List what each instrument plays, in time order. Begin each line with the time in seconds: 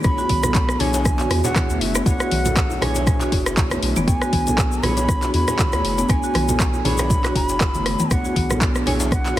Already playing: analog synth pad B3 D4 G#5
0.03 analog synth bass B1, marimba B3, synth keys D4 G#4 C#5, analog synth pad E5, bansuri B5, kick, cross-stick, closed hi-hat, high conga, djembe bass, shaker
0.18 marimba F#4, djembe tone, shaker
0.29 analog synth bass B1, marimba B3, kick, open hi-hat, mid tom
0.43 marimba A4, cross-stick, closed hi-hat, high conga, low conga, shaker
0.55 kick, clap, closed hi-hat, djembe tone, shaker
0.69 cross-stick, shaker
0.79 analog synth bass B1, synth keys D4 G#4 C#5, marimba E4, bansuri G#5, open hi-hat, high conga, djembe tone, low conga
0.94 closed hi-hat, djembe slap, shaker
1.05 kick, cross-stick, closed hi-hat, high conga, shaker
1.18 marimba F#4, clap, closed hi-hat, djembe slap, djembe tone, shaker
1.30 analog synth bass E2, cross-stick, open hi-hat, high conga, djembe bass
1.44 synth keys D4 G#4 C#5, bansuri F#5, closed hi-hat, djembe slap, djembe tone, low conga, shaker
1.56 marimba E4, kick, cross-stick, clap, closed hi-hat, mid tom, high conga, shaker
1.70 analog synth bass D2, marimba A3, closed hi-hat, shaker
1.80 analog synth bass F#1, bansuri E5, open hi-hat, djembe tone
1.95 marimba B3, cross-stick, closed hi-hat, djembe slap, shaker
2.06 analog synth bass B1, marimba B3, synth keys D4 G#4 C#5, bansuri F#5, kick, closed hi-hat, djembe tone, djembe bass, shaker
2.20 marimba F#4, cross-stick, shaker
2.31 analog synth bass B1, marimba B3, open hi-hat, mid tom
2.45 marimba A4, closed hi-hat, djembe tone, high conga, low conga, shaker
2.56 kick, cross-stick, clap, closed hi-hat, shaker
2.70 djembe tone, shaker
2.81 analog synth bass B1, synth keys D4 G#4 C#5, marimba E4, bansuri G#5, cross-stick, open hi-hat, high conga, low conga
2.95 closed hi-hat, djembe slap, shaker
3.07 kick, cross-stick, closed hi-hat, djembe tone, low conga, shaker
3.21 marimba F#4, clap, closed hi-hat, djembe slap, shaker
3.32 analog synth bass F#1, synth keys D4 G#4 C#5, kick, open hi-hat, djembe tone, djembe bass
3.46 cross-stick, closed hi-hat, djembe slap, shaker
3.57 analog synth bass B1, marimba E4, kick, clap, closed hi-hat, shaker
3.70 marimba A3, cross-stick, closed hi-hat, high conga, djembe tone, shaker
3.82 analog synth bass B1, open hi-hat
3.96 analog synth bass F#1, marimba B3, closed hi-hat, mid tom, djembe tone, shaker
4.08 analog synth bass B1, marimba B3, synth keys D4 G#4 C#5, analog synth pad C#5, bansuri G#5, kick, closed hi-hat, high conga, djembe bass, shaker
4.22 marimba F#4, cross-stick, djembe tone, shaker
4.33 analog synth bass B1, marimba B3, kick, open hi-hat, mid tom
4.47 marimba A4, closed hi-hat, high conga, djembe tone, low conga, shaker
4.58 kick, cross-stick, clap, closed hi-hat, shaker
4.72 shaker
4.83 analog synth bass B1, synth keys D4 G#4 C#5, marimba E4, bansuri B5, cross-stick, open hi-hat, high conga, djembe tone, low conga
4.97 closed hi-hat, djembe slap, shaker
5.08 kick, cross-stick, closed hi-hat, high conga, djembe tone, shaker
5.22 marimba F#4, clap, closed hi-hat, djembe slap, shaker
5.34 analog synth bass E2, bansuri B5, open hi-hat, high conga, djembe bass
5.48 synth keys D4 G#4 C#5, cross-stick, closed hi-hat, djembe slap, djembe tone, low conga, shaker
5.59 marimba E4, kick, clap, closed hi-hat, mid tom, high conga, shaker
5.72 analog synth bass D2, marimba A3, cross-stick, closed hi-hat, djembe tone, shaker
5.84 analog synth bass F#1, open hi-hat
5.98 marimba B3, closed hi-hat, djembe slap, shaker
6.09 analog synth bass B1, marimba B3, synth keys D4 G#4 C#5, bansuri G#5, kick, cross-stick, closed hi-hat, djembe tone, djembe bass, shaker
6.23 marimba F#4, shaker
6.34 analog synth bass B1, marimba B3, cross-stick, open hi-hat, mid tom, djembe tone
6.49 marimba A4, closed hi-hat, high conga, low conga, shaker
6.60 kick, cross-stick, clap, closed hi-hat, shaker
6.74 djembe tone, shaker
6.85 analog synth bass B1, synth keys D4 G#4 C#5, marimba E4, bansuri B5, open hi-hat, high conga, low conga
6.98 cross-stick, closed hi-hat, djembe slap, djembe tone, shaker
7.10 kick, closed hi-hat, low conga, shaker
7.24 marimba F#4, cross-stick, clap, closed hi-hat, djembe slap, shaker
7.35 analog synth bass F#1, bansuri B5, kick, open hi-hat, djembe tone, djembe bass
7.49 closed hi-hat, djembe slap, shaker
7.60 marimba E4, kick, cross-stick, clap, closed hi-hat, djembe tone, shaker
7.75 marimba A3, closed hi-hat, high conga, shaker
7.86 cross-stick, open hi-hat
7.99 marimba B3, closed hi-hat, mid tom, djembe tone, shaker
8.11 analog synth bass B1, marimba B3, synth keys D4 G#4 C#5, bansuri F#5, kick, cross-stick, closed hi-hat, high conga, djembe bass, shaker
8.25 marimba F#4, djembe tone, shaker
8.36 analog synth bass B1, marimba B3, kick, open hi-hat, mid tom
8.50 marimba A4, cross-stick, closed hi-hat, high conga, low conga, shaker
8.61 kick, clap, closed hi-hat, djembe tone, shaker
8.75 cross-stick, shaker
8.86 analog synth bass B1, synth keys D4 G#4 C#5, marimba E4, bansuri G#5, open hi-hat, high conga, djembe tone, low conga
9.00 closed hi-hat, djembe slap, shaker
9.11 bansuri F#5, kick, cross-stick, closed hi-hat, high conga, shaker
9.25 marimba F#4, clap, closed hi-hat, djembe slap, djembe tone, shaker
9.36 djembe bass